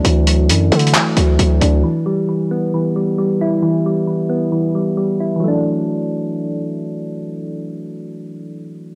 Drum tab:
HH |x--x--x--xxxx--x--x--x--|------------------------|------------------------|------------------------|
CP |------------x-----------|------------------------|------------------------|------------------------|

HH |------------------------|
CP |------------------------|